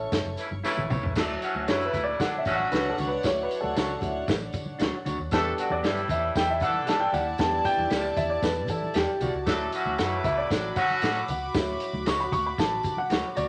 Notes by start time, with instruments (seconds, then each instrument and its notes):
Already playing: grand piano C#4 E4 A4 C#5, string section C#5 C#6
0.12 fingered electric bass G1, kick, snare, closed hi-hat, tambourine, muted conga
0.25 fingered electric bass F#1, muted conga
0.37 horn section C#3 E3 A3 E4, closed hi-hat, tambourine
0.51 fingered electric bass G1, high conga
0.64 horn section C#3 E3 A3 E4, clean electric guitar E4 A4 C#5, snare, tambourine
0.77 fingered electric bass A1, muted conga, low conga
0.90 fingered electric bass C2, clean electric guitar E4 A4 C#5, mid tom, tambourine, high conga, low conga
1.03 fingered electric bass C#2, floor tom
1.15 fingered electric bass D2, horn section F#3 A3 D4 A4, grand piano F#3 C#4 E4, kick, snare, crash, tambourine, muted conga
1.30 muted conga
1.42 horn section D3 F#3 C#4 F#4, closed hi-hat, tambourine
1.55 fingered electric bass D2, high conga
1.68 fingered electric bass F#2, horn section C#3 E3 A3 E4, clean electric guitar D4 F#4 C#5, grand piano C#5, snare, closed hi-hat, tambourine, muted conga
1.81 closed hi-hat, muted conga
1.85 grand piano B4
1.93 fingered electric bass D2, kick, closed hi-hat, tambourine, low conga
2.04 grand piano D5
2.19 horn section A2 D3 F#3 D4, fingered electric bass D3, string section D4 C#5 F#5, grand piano F#5, kick, snare, closed hi-hat, tambourine
2.35 grand piano E5, muted conga
2.45 fingered electric bass A1, horn section D3 F#3 C#4 F#4, kick, closed hi-hat, tambourine
2.55 grand piano F#5
2.60 high conga
2.71 fingered electric bass C#2, clean electric guitar D4 F#4 C#5, grand piano B4, snare, closed hi-hat, tambourine, muted conga
2.86 grand piano A4, muted conga
2.97 fingered electric bass C#2, clean electric guitar D4 F#4 C#5, closed hi-hat, tambourine, high conga, low conga
3.07 grand piano B4
3.23 fingered electric bass D2, grand piano F#3 C#4 E4 C#5, kick, snare, closed hi-hat, tambourine, muted conga
3.43 grand piano B4
3.51 closed hi-hat, tambourine
3.61 fingered electric bass D2, grand piano A4, high conga
3.75 fingered electric bass C#2, clean electric guitar D4 F#4 C#5, snare, closed hi-hat, tambourine
3.89 muted conga
4.01 fingered electric bass D2, grand piano F#3 C#4 E4, kick, closed hi-hat, tambourine, low conga
4.28 fingered electric bass A1, kick, snare, closed hi-hat, tambourine, muted conga
4.42 muted conga
4.53 fingered electric bass D3, kick, closed hi-hat, tambourine
4.66 high conga
4.79 fingered electric bass D2, clean electric guitar D4 F#4 C#5, snare, closed hi-hat, tambourine
4.93 muted conga
5.05 fingered electric bass D2, clean electric guitar D4 F#4 C#5, closed hi-hat, tambourine, high conga, low conga
5.19 fingered electric bass D#2
5.31 fingered electric bass E2, horn section E3 A3 D4 A4, grand piano G3 B3 D4 A4, kick, snare, closed hi-hat, tambourine, muted conga
5.58 horn section F#3 D4 F#4, closed hi-hat, tambourine
5.70 fingered electric bass E2, grand piano D5, high conga
5.83 fingered electric bass G2, horn section A2 E3 G3 E4, clean electric guitar G4 A4 D5, snare, closed hi-hat, tambourine, muted conga
5.96 closed hi-hat, muted conga
6.08 fingered electric bass E2, grand piano E5, kick, closed hi-hat, tambourine, low conga
6.35 fingered electric bass E2, horn section A2 E3 G3 E4, string section E4 D5 A5, grand piano G5, kick, snare, closed hi-hat, tambourine, muted conga
6.50 grand piano E5, muted conga
6.60 fingered electric bass E3, horn section E3 A3 D4 A4, grand piano F#5, kick, closed hi-hat, tambourine
6.74 high conga
6.86 fingered electric bass A2, clean electric guitar G4 A4 D5, grand piano A5, snare, closed hi-hat, tambourine
7.00 grand piano G5, muted conga
7.12 fingered electric bass D#2, clean electric guitar G4 A4 D5, grand piano F#5, closed hi-hat, tambourine, high conga, low conga
7.38 fingered electric bass E2, grand piano G3 B3 D4 A5, kick, snare, closed hi-hat, tambourine
7.65 grand piano G5, kick, closed hi-hat, tambourine
7.77 fingered electric bass E2, high conga
7.90 fingered electric bass D2, clean electric guitar G4 A4 D5, snare, closed hi-hat, tambourine, muted conga
8.04 muted conga
8.16 fingered electric bass E2, grand piano E5, kick, closed hi-hat, tambourine, low conga
8.30 grand piano D5
8.43 fingered electric bass E2, grand piano B4, kick, snare, closed hi-hat, tambourine, muted conga
8.68 fingered electric bass E3, grand piano A4, kick, closed hi-hat, tambourine
8.82 high conga
8.94 fingered electric bass E2, clean electric guitar G4 A4 D5, grand piano G4, snare, closed hi-hat, tambourine, muted conga
9.09 muted conga
9.20 fingered electric bass C2, grand piano F#4, clean electric guitar G4 A4 D5, closed hi-hat, tambourine, high conga, low conga
9.34 fingered electric bass C#2
9.46 fingered electric bass D2, grand piano F#3 C#4 E4, horn section F#3 A3 D4 A4, string section F#4 B5 D6, kick, snare, closed hi-hat, tambourine, muted conga
9.72 horn section D3 F#3 C#4 F#4, closed hi-hat, tambourine
9.86 fingered electric bass D2, high conga
9.98 fingered electric bass F#2, horn section C#3 E3 A3 E4, clean electric guitar F#4 A4 C#5, grand piano F#5, snare, closed hi-hat, tambourine
10.12 muted conga
10.24 fingered electric bass C#2, grand piano E5, kick, closed hi-hat, tambourine, low conga
10.38 grand piano D5
10.51 fingered electric bass A1, horn section A2 D3 F#3 D4, kick, snare, closed hi-hat, tambourine, muted conga
10.76 fingered electric bass D3, horn section D3 F#3 C#4 F#4, grand piano F#5, kick, closed hi-hat, tambourine
10.90 high conga
11.01 fingered electric bass A2, clean electric guitar F#4 A4 C#5, snare, closed hi-hat, tambourine, muted conga
11.15 closed hi-hat
11.28 fingered electric bass C#2, grand piano F#5, closed hi-hat, tambourine, high conga, low conga
11.54 fingered electric bass D2, grand piano F#3 C#4 E4, kick, snare, closed hi-hat, tambourine
11.80 closed hi-hat, tambourine
11.93 fingered electric bass D2, high conga
12.06 fingered electric bass C#2, clean electric guitar F#4 A4 C#5, grand piano C#6, snare, closed hi-hat, tambourine, muted conga
12.20 grand piano B5
12.32 fingered electric bass D2, grand piano C#6, kick, closed hi-hat, tambourine, low conga
12.46 grand piano B5
12.58 fingered electric bass A1, grand piano A5, kick, snare, closed hi-hat, tambourine
12.73 muted conga
12.83 fingered electric bass D3, kick, closed hi-hat, tambourine
12.97 grand piano F#5, high conga
13.10 fingered electric bass D2, clean electric guitar F#4 A4 C#5, snare, closed hi-hat, tambourine, muted conga
13.23 muted conga
13.35 fingered electric bass D2, clean electric guitar F#4 A4 C#5, grand piano D5, closed hi-hat, tambourine, high conga, low conga